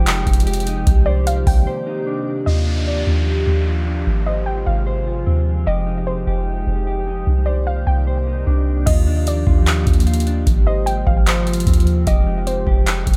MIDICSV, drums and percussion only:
0, 0, Header, 1, 2, 480
1, 0, Start_track
1, 0, Key_signature, -3, "major"
1, 0, Tempo, 400000
1, 1042, Time_signature, 4, 2, 24, 8
1, 15800, End_track
2, 0, Start_track
2, 0, Title_t, "Drums"
2, 80, Note_on_c, 9, 42, 88
2, 87, Note_on_c, 9, 39, 125
2, 200, Note_off_c, 9, 42, 0
2, 207, Note_off_c, 9, 39, 0
2, 321, Note_on_c, 9, 36, 100
2, 321, Note_on_c, 9, 42, 71
2, 401, Note_off_c, 9, 42, 0
2, 401, Note_on_c, 9, 42, 71
2, 441, Note_off_c, 9, 36, 0
2, 481, Note_off_c, 9, 42, 0
2, 481, Note_on_c, 9, 42, 72
2, 562, Note_off_c, 9, 42, 0
2, 562, Note_on_c, 9, 42, 71
2, 642, Note_off_c, 9, 42, 0
2, 642, Note_on_c, 9, 42, 74
2, 722, Note_off_c, 9, 42, 0
2, 722, Note_on_c, 9, 42, 68
2, 801, Note_off_c, 9, 42, 0
2, 801, Note_on_c, 9, 42, 66
2, 921, Note_off_c, 9, 42, 0
2, 1042, Note_on_c, 9, 36, 107
2, 1042, Note_on_c, 9, 42, 78
2, 1162, Note_off_c, 9, 36, 0
2, 1162, Note_off_c, 9, 42, 0
2, 1522, Note_on_c, 9, 42, 73
2, 1642, Note_off_c, 9, 42, 0
2, 1761, Note_on_c, 9, 36, 97
2, 1763, Note_on_c, 9, 46, 58
2, 1881, Note_off_c, 9, 36, 0
2, 1883, Note_off_c, 9, 46, 0
2, 10642, Note_on_c, 9, 36, 107
2, 10642, Note_on_c, 9, 42, 72
2, 10642, Note_on_c, 9, 49, 95
2, 10762, Note_off_c, 9, 36, 0
2, 10762, Note_off_c, 9, 42, 0
2, 10762, Note_off_c, 9, 49, 0
2, 11123, Note_on_c, 9, 42, 74
2, 11243, Note_off_c, 9, 42, 0
2, 11361, Note_on_c, 9, 36, 90
2, 11481, Note_off_c, 9, 36, 0
2, 11601, Note_on_c, 9, 42, 85
2, 11608, Note_on_c, 9, 39, 122
2, 11721, Note_off_c, 9, 42, 0
2, 11728, Note_off_c, 9, 39, 0
2, 11841, Note_on_c, 9, 36, 96
2, 11842, Note_on_c, 9, 42, 69
2, 11922, Note_off_c, 9, 42, 0
2, 11922, Note_on_c, 9, 42, 66
2, 11961, Note_off_c, 9, 36, 0
2, 12002, Note_off_c, 9, 42, 0
2, 12002, Note_on_c, 9, 42, 70
2, 12082, Note_off_c, 9, 42, 0
2, 12082, Note_on_c, 9, 42, 70
2, 12162, Note_off_c, 9, 42, 0
2, 12162, Note_on_c, 9, 42, 68
2, 12242, Note_off_c, 9, 42, 0
2, 12242, Note_on_c, 9, 42, 66
2, 12322, Note_off_c, 9, 42, 0
2, 12322, Note_on_c, 9, 42, 65
2, 12442, Note_off_c, 9, 42, 0
2, 12562, Note_on_c, 9, 36, 106
2, 12562, Note_on_c, 9, 42, 71
2, 12682, Note_off_c, 9, 36, 0
2, 12682, Note_off_c, 9, 42, 0
2, 13044, Note_on_c, 9, 42, 73
2, 13164, Note_off_c, 9, 42, 0
2, 13282, Note_on_c, 9, 36, 94
2, 13402, Note_off_c, 9, 36, 0
2, 13522, Note_on_c, 9, 42, 85
2, 13529, Note_on_c, 9, 39, 120
2, 13642, Note_off_c, 9, 42, 0
2, 13649, Note_off_c, 9, 39, 0
2, 13761, Note_on_c, 9, 42, 69
2, 13842, Note_off_c, 9, 42, 0
2, 13842, Note_on_c, 9, 42, 72
2, 13922, Note_off_c, 9, 42, 0
2, 13922, Note_on_c, 9, 42, 68
2, 14000, Note_on_c, 9, 36, 98
2, 14002, Note_off_c, 9, 42, 0
2, 14002, Note_on_c, 9, 42, 70
2, 14082, Note_off_c, 9, 42, 0
2, 14082, Note_on_c, 9, 42, 69
2, 14120, Note_off_c, 9, 36, 0
2, 14162, Note_off_c, 9, 42, 0
2, 14162, Note_on_c, 9, 42, 72
2, 14242, Note_off_c, 9, 42, 0
2, 14242, Note_on_c, 9, 42, 63
2, 14362, Note_off_c, 9, 42, 0
2, 14482, Note_on_c, 9, 36, 110
2, 14482, Note_on_c, 9, 42, 73
2, 14602, Note_off_c, 9, 36, 0
2, 14602, Note_off_c, 9, 42, 0
2, 14963, Note_on_c, 9, 42, 76
2, 15083, Note_off_c, 9, 42, 0
2, 15201, Note_on_c, 9, 36, 94
2, 15321, Note_off_c, 9, 36, 0
2, 15442, Note_on_c, 9, 42, 82
2, 15449, Note_on_c, 9, 39, 116
2, 15562, Note_off_c, 9, 42, 0
2, 15569, Note_off_c, 9, 39, 0
2, 15682, Note_on_c, 9, 36, 94
2, 15683, Note_on_c, 9, 42, 70
2, 15763, Note_off_c, 9, 42, 0
2, 15763, Note_on_c, 9, 42, 69
2, 15800, Note_off_c, 9, 36, 0
2, 15800, Note_off_c, 9, 42, 0
2, 15800, End_track
0, 0, End_of_file